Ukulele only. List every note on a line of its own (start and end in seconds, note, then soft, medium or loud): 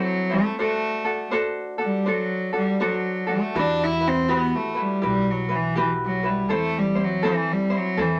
0.00 0.30 C4 medium
0.00 0.29 E4 medium
0.00 0.29 A4 medium
0.00 0.28 C5 loud
0.30 0.59 C4 soft
0.30 0.59 E4 medium
0.30 0.58 C5 medium
0.59 1.05 D4 medium
0.59 1.04 F#4 medium
0.59 1.03 A4 medium
0.59 1.04 C5 medium
1.05 1.30 D4 soft
1.05 1.31 F#4 soft
1.05 1.31 A4 medium
1.31 1.79 D4 medium
1.31 1.78 F#4 medium
1.31 1.77 A4 medium
1.31 1.78 C5 medium
1.78 2.05 D4 soft
1.78 2.05 F#4 soft
1.78 2.05 A4 medium
2.06 2.53 D4 medium
2.06 2.52 F#4 medium
2.06 2.51 A4 medium
2.06 2.52 C5 medium
2.53 2.79 D4 soft
2.53 2.79 F#4 soft
2.53 2.80 A4 medium
2.80 3.27 D4 medium
2.80 3.27 F#4 medium
2.80 3.26 A4 medium
2.80 3.26 C5 medium
3.27 3.55 D4 soft
3.27 3.54 F#4 medium
3.27 3.55 A4 medium
3.55 4.01 E4 medium
3.55 4.00 F#4 medium
3.55 4.00 G4 medium
3.55 3.99 B4 medium
4.00 4.27 E4 soft
4.00 4.28 F#4 soft
4.00 4.28 B4 medium
4.28 4.75 E4 medium
4.28 4.74 F#4 medium
4.28 4.74 G4 medium
4.28 4.73 B4 medium
4.74 5.01 E4 soft
4.74 5.01 F#4 soft
4.74 5.01 B4 medium
5.02 5.49 E4 medium
5.02 5.48 F#4 medium
5.02 5.48 G4 medium
5.02 5.47 B4 medium
5.49 5.75 E4 soft
5.49 5.76 F#4 soft
5.49 5.75 B4 medium
5.75 6.23 E4 medium
5.75 6.23 F#4 medium
5.75 6.23 G4 medium
5.75 6.22 B4 medium
6.23 6.49 E4 soft
6.23 6.48 F#4 medium
6.23 6.50 B4 medium
6.49 6.96 C4 medium
6.49 6.95 E4 medium
6.49 6.95 A4 medium
6.49 6.94 C5 medium
6.95 7.22 C4 soft
6.95 7.23 E4 soft
6.95 7.22 C5 medium
7.23 7.70 C4 medium
7.23 7.70 E4 medium
7.23 7.70 A4 medium
7.23 7.69 C5 medium
7.70 7.97 C4 soft
7.70 7.98 E4 soft
7.70 7.97 C5 medium
7.97 8.20 C4 medium
7.97 8.20 E4 medium
7.97 8.20 A4 medium
7.97 8.20 C5 medium